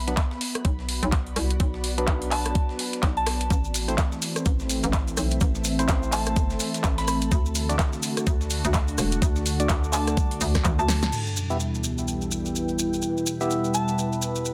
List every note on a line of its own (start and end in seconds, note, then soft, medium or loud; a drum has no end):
0.00 0.16 B1 loud
0.00 3.51 B3 medium
0.00 1.04 E5 medium
0.00 5.05 B5 medium
0.07 0.14 F#3 medium
0.07 0.14 B3 medium
0.07 0.14 D4 medium
0.07 0.14 B4 medium
0.07 snare soft
0.07 closed hi-hat medium
0.17 4.13 D5 medium
0.17 kick loud
0.17 snare loud
0.17 clap loud
0.17 closed hi-hat medium
0.17 closed hi-hat soft
0.23 4.54 F#4 medium
0.31 snare medium
0.41 closed hi-hat medium
0.41 open hi-hat loud
0.55 cross-stick medium
0.55 closed hi-hat medium
0.65 1.00 B1 medium
0.65 kick loud
0.65 closed hi-hat medium
0.65 closed hi-hat soft
0.79 snare soft
0.89 closed hi-hat medium
0.89 open hi-hat loud
1.03 1.35 B1 loud
1.03 snare soft
1.03 closed hi-hat medium
1.12 kick loud
1.12 snare loud
1.12 clap loud
1.12 closed hi-hat medium
1.12 closed hi-hat soft
1.26 closed hi-hat soft
1.36 1.58 C2 medium
1.36 cross-stick medium
1.36 closed hi-hat medium
1.36 open hi-hat loud
1.50 closed hi-hat medium
1.60 2.06 B1 loud
1.60 kick loud
1.60 closed hi-hat medium
1.60 closed hi-hat soft
1.74 snare soft
1.84 closed hi-hat medium
1.84 open hi-hat loud
1.98 3.49 F#3 medium
1.98 3.49 B3 medium
1.98 3.49 D4 medium
1.98 3.49 B4 medium
1.98 closed hi-hat medium
2.07 2.54 B1 loud
2.07 kick loud
2.07 clap loud
2.07 closed hi-hat medium
2.07 closed hi-hat soft
2.22 closed hi-hat medium
2.31 2.50 A5 medium
2.31 clap medium
2.31 open hi-hat loud
2.45 cross-stick medium
2.45 closed hi-hat medium
2.55 kick loud
2.55 closed hi-hat medium
2.55 closed hi-hat soft
2.69 snare soft
2.79 snare soft
2.79 closed hi-hat medium
2.79 open hi-hat loud
2.93 snare soft
2.93 closed hi-hat medium
3.03 3.49 B1 loud
3.03 kick loud
3.03 snare loud
3.03 clap loud
3.03 closed hi-hat medium
3.03 closed hi-hat soft
3.17 3.56 A5 medium
3.17 closed hi-hat soft
3.26 cross-stick medium
3.26 snare loud
3.26 closed hi-hat medium
3.26 open hi-hat loud
3.41 closed hi-hat soft
3.41 closed hi-hat medium
3.50 3.97 A1 loud
3.50 7.28 E3 medium
3.50 11.08 A3 medium
3.50 8.20 C4 medium
3.50 7.28 C4 medium
3.50 kick loud
3.50 closed hi-hat medium
3.50 closed hi-hat soft
3.50 maracas medium
3.64 maracas soft
3.74 closed hi-hat medium
3.74 open hi-hat loud
3.74 maracas medium
3.88 3.95 A3 medium
3.88 3.95 C4 medium
3.88 3.95 E4 medium
3.88 3.95 C5 medium
3.88 snare medium
3.88 closed hi-hat medium
3.88 maracas soft
3.98 12.67 A4 medium
3.98 kick loud
3.98 snare loud
3.98 clap loud
3.98 closed hi-hat medium
3.98 closed hi-hat soft
3.98 maracas soft
4.12 snare medium
4.12 maracas soft
4.17 8.85 E5 medium
4.22 closed hi-hat medium
4.22 open hi-hat loud
4.22 maracas medium
4.36 cross-stick medium
4.36 closed hi-hat medium
4.36 maracas soft
4.46 4.81 A1 medium
4.46 kick loud
4.46 closed hi-hat medium
4.46 closed hi-hat soft
4.46 maracas soft
4.60 snare soft
4.60 maracas soft
4.69 12.08 A5 medium
4.69 closed hi-hat medium
4.69 open hi-hat loud
4.69 maracas medium
4.83 5.16 A1 loud
4.83 snare soft
4.83 closed hi-hat medium
4.83 maracas soft
4.93 kick loud
4.93 snare loud
4.93 clap loud
4.93 closed hi-hat medium
4.93 closed hi-hat soft
4.93 maracas soft
5.07 closed hi-hat soft
5.07 maracas soft
5.17 5.39 B1 medium
5.17 cross-stick medium
5.17 closed hi-hat medium
5.17 open hi-hat loud
5.17 maracas medium
5.31 closed hi-hat medium
5.31 maracas soft
5.41 5.87 A1 loud
5.41 kick loud
5.41 closed hi-hat medium
5.41 maracas soft
5.55 snare soft
5.55 maracas soft
5.64 closed hi-hat medium
5.64 open hi-hat loud
5.64 maracas medium
5.79 7.30 A3 medium
5.79 7.30 C4 medium
5.79 7.30 E4 medium
5.79 7.30 C5 medium
5.79 closed hi-hat medium
5.79 maracas soft
5.89 6.35 A1 loud
5.89 kick loud
5.89 snare loud
5.89 clap loud
5.89 closed hi-hat medium
5.89 maracas soft
6.03 maracas soft
6.12 6.31 A5 medium
6.12 clap medium
6.12 closed hi-hat medium
6.12 open hi-hat loud
6.12 maracas medium
6.26 cross-stick medium
6.26 closed hi-hat medium
6.26 maracas soft
6.36 6.59 G1 loud
6.36 kick loud
6.36 closed hi-hat medium
6.36 closed hi-hat soft
6.36 maracas soft
6.50 snare soft
6.50 maracas soft
6.60 snare soft
6.60 closed hi-hat medium
6.60 open hi-hat loud
6.60 maracas medium
6.74 snare soft
6.74 closed hi-hat medium
6.74 maracas soft
6.84 7.30 A1 loud
6.84 kick loud
6.84 snare loud
6.84 clap loud
6.84 closed hi-hat medium
6.84 maracas medium
6.98 7.04 B5 medium
6.98 snare loud
6.98 closed hi-hat medium
6.98 maracas soft
7.08 7.17 B5 medium
7.08 cross-stick medium
7.08 closed hi-hat medium
7.08 open hi-hat loud
7.08 maracas medium
7.21 closed hi-hat soft
7.21 closed hi-hat medium
7.21 maracas soft
7.31 7.78 D2 loud
7.31 11.09 D3 medium
7.31 12.02 D4 medium
7.31 11.09 F#4 medium
7.31 kick loud
7.31 closed hi-hat medium
7.31 maracas medium
7.46 maracas soft
7.55 closed hi-hat medium
7.55 open hi-hat loud
7.55 maracas medium
7.69 7.76 A3 medium
7.69 7.76 D4 medium
7.69 7.76 F#4 medium
7.69 7.76 D5 medium
7.69 snare soft
7.69 closed hi-hat medium
7.69 maracas soft
7.79 kick loud
7.79 snare loud
7.79 clap loud
7.79 closed hi-hat medium
7.79 maracas soft
7.93 snare medium
7.93 maracas soft
8.03 closed hi-hat medium
8.03 open hi-hat loud
8.03 maracas medium
8.17 cross-stick medium
8.17 closed hi-hat medium
8.17 maracas soft
8.27 8.62 D2 loud
8.27 kick loud
8.27 closed hi-hat medium
8.27 maracas soft
8.41 snare soft
8.41 maracas soft
8.50 11.12 F#5 medium
8.50 closed hi-hat medium
8.50 open hi-hat loud
8.50 maracas medium
8.64 8.97 D2 loud
8.64 snare soft
8.64 closed hi-hat medium
8.64 maracas soft
8.74 kick loud
8.74 snare loud
8.74 clap loud
8.74 closed hi-hat medium
8.74 maracas soft
8.88 closed hi-hat soft
8.88 maracas soft
8.98 9.20 E1 medium
8.98 cross-stick medium
8.98 closed hi-hat medium
8.98 open hi-hat loud
8.98 maracas medium
9.12 closed hi-hat medium
9.12 maracas soft
9.22 9.68 D2 loud
9.22 kick loud
9.22 closed hi-hat medium
9.22 maracas medium
9.36 snare soft
9.36 maracas soft
9.46 closed hi-hat medium
9.46 open hi-hat loud
9.46 maracas medium
9.60 11.11 A3 medium
9.60 11.11 D4 medium
9.60 11.11 F#4 medium
9.60 11.11 D5 medium
9.60 closed hi-hat medium
9.60 maracas soft
9.69 10.16 D2 medium
9.69 kick loud
9.69 snare loud
9.69 clap loud
9.69 closed hi-hat medium
9.69 maracas medium
9.84 maracas soft
9.93 10.12 A5 medium
9.93 clap medium
9.93 closed hi-hat medium
9.93 open hi-hat loud
9.93 maracas medium
10.07 cross-stick medium
10.07 closed hi-hat medium
10.07 maracas soft
10.17 kick loud
10.17 closed hi-hat medium
10.17 high tom medium
10.17 maracas medium
10.31 closed hi-hat medium
10.31 maracas soft
10.41 10.63 D2 loud
10.41 open hi-hat loud
10.41 maracas medium
10.55 kick medium
10.55 cross-stick medium
10.55 snare medium
10.55 closed hi-hat medium
10.55 maracas soft
10.64 10.77 D2 loud
10.64 kick loud
10.64 clap loud
10.64 closed hi-hat medium
10.64 mid tom medium
10.64 maracas medium
10.79 11.11 D2 medium
10.79 11.12 A5 medium
10.79 maracas soft
10.88 cross-stick medium
10.88 snare medium
10.88 closed hi-hat medium
10.88 open hi-hat loud
10.88 maracas medium
11.02 snare medium
11.02 closed hi-hat soft
11.02 closed hi-hat medium
11.02 maracas soft
11.12 14.54 E2 medium
11.12 14.54 B2 medium
11.12 14.54 G3 medium
11.12 14.54 E4 medium
11.12 crash medium
11.12 sub drop medium
11.12 maracas soft
11.27 maracas soft
11.35 14.54 G5 medium
11.35 maracas medium
11.50 11.57 B3 medium
11.50 11.57 E4 medium
11.50 11.57 G4 medium
11.50 11.57 E5 medium
11.50 maracas soft
11.60 maracas soft
11.68 14.54 B4 medium
11.75 maracas soft
11.84 maracas medium
11.98 maracas soft
12.08 maracas soft
12.21 maracas soft
12.31 maracas medium
12.46 maracas soft
12.56 maracas soft
12.68 maracas soft
12.79 maracas medium
12.85 14.54 B5 medium
12.93 maracas soft
13.02 maracas soft
13.17 maracas soft
13.26 maracas medium
13.41 14.54 B3 medium
13.41 14.54 E4 medium
13.41 14.54 G4 medium
13.41 14.54 E5 medium
13.41 maracas soft
13.50 maracas medium
13.64 maracas soft
13.74 13.93 A5 medium
13.74 maracas medium
13.88 maracas soft
13.98 maracas soft
14.13 maracas soft
14.22 maracas medium
14.35 maracas soft
14.45 maracas medium